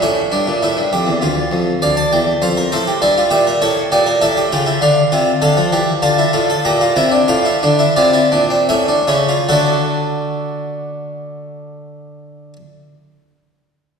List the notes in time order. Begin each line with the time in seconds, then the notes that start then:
0.02 A2 C#4 E5
0.32 G2 D4
0.48 A#2
0.62 A2 E4
0.77 G2
0.93 F2 G4
1.07 E2
1.22 D2 F4
1.51 F2
1.82 D2 D5 F5
1.97 A5
2.13 E2 G5
2.42 F2 C5 F5
2.57 A#4
2.72 A2 A4 C5
2.87 G4
3.02 G2 E4 D5
3.18 F4
3.30 A#2 G4 E5
3.47 A#4
3.62 A2 A4 C#5
3.92 A#2 G4 D5
4.06 A#4
4.21 A2 A4 E5
4.37 G4
4.52 C#3 F4 G5
4.66 E4
4.82 D3 D4 F5
5.12 C3 F4
5.42 D3 A4 F5
5.57 F3
5.72 E3 G4
6.02 D3 F4 A5
6.18 E4
6.33 A2 F4
6.50 A4
6.65 A#2 G4 A#5
6.81 F4
6.96 C3 E4 G5
7.11 D4
7.28 A2 F4 F5
7.45 E4
7.63 D3 D4
7.79 E4
7.96 C3 F4 D5
8.13 E4
8.32 A#2 D4
8.50 C4
8.69 A2 C#4 E5
8.88 D4
9.08 C#3 E4 C#5
9.29 F4
9.49 D3 A3 D4 F#4 A4